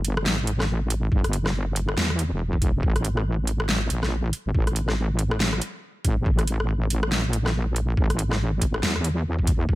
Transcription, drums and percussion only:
0.05 closed hi-hat
0.17 cross-stick
0.26 snare
0.47 closed hi-hat
0.60 cross-stick, snare
0.90 closed hi-hat
1.12 kick
1.24 cross-stick, closed hi-hat
1.33 closed hi-hat
1.46 cross-stick, snare
1.76 closed hi-hat
1.89 cross-stick
1.97 snare
2.10 cross-stick
2.19 closed hi-hat
2.53 kick
2.62 kick, closed hi-hat
2.83 kick
2.96 cross-stick, closed hi-hat
3.05 closed hi-hat
3.17 cross-stick
3.47 closed hi-hat
3.60 cross-stick
3.69 snare
3.90 closed hi-hat
4.03 cross-stick, snare
4.33 closed hi-hat
4.55 kick
4.67 cross-stick, closed hi-hat
4.76 closed hi-hat
4.89 cross-stick, snare
5.19 closed hi-hat
5.31 cross-stick
5.40 snare
5.53 cross-stick
5.62 closed hi-hat
6.05 kick, closed hi-hat
6.26 kick
6.39 cross-stick, closed hi-hat
6.47 closed hi-hat
6.60 cross-stick
6.90 closed hi-hat
7.03 cross-stick
7.12 snare
7.33 closed hi-hat
7.46 cross-stick, snare
7.76 closed hi-hat
7.97 kick
8.10 cross-stick, closed hi-hat
8.19 closed hi-hat
8.31 cross-stick, snare
8.62 kick, closed hi-hat
8.74 cross-stick
8.83 snare
8.96 cross-stick
9.04 closed hi-hat
9.39 kick
9.47 kick, closed hi-hat
9.69 kick

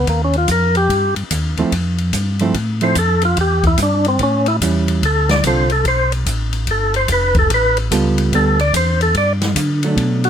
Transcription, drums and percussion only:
0.07 kick, ride
0.33 ride
0.48 kick, hi-hat pedal, ride
0.75 ride
0.90 kick, ride
1.16 ride
1.31 kick, hi-hat pedal, ride
1.57 ride
1.72 kick, ride
1.98 ride
2.13 kick, hi-hat pedal, ride
2.39 ride
2.54 kick, ride
2.81 ride
2.95 kick, hi-hat pedal, ride
3.22 ride
3.37 kick, ride
3.64 kick, ride
3.78 kick, hi-hat pedal, ride
4.05 ride
4.19 kick, ride
4.46 ride
4.61 kick, hi-hat pedal, ride
4.88 ride
5.03 kick, ride
5.29 snare, ride
5.44 kick, hi-hat pedal, ride
5.70 ride
5.85 kick, ride
6.12 ride
6.26 kick, hi-hat pedal, ride
6.53 ride
6.67 kick, ride
6.94 ride
7.08 kick, hi-hat pedal, ride
7.35 kick, ride
7.50 kick, ride
7.77 ride
7.91 kick, hi-hat pedal, ride
8.18 ride
8.32 kick, ride
8.59 ride
8.74 kick, hi-hat pedal, ride
9.01 ride
9.15 kick, ride
9.42 snare, ride
9.56 kick, hi-hat pedal, ride
9.83 ride
9.97 kick, ride
10.24 ride

